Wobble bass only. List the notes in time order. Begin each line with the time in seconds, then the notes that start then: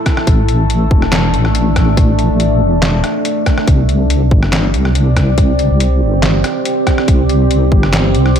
0.27 A1
0.91 E1
1.33 A1
2.30 A1
2.61 E1
3.68 C2
4.31 G1
4.74 C2
5.70 C2
6.01 G1
7.08 C2
7.72 G1
8.14 C2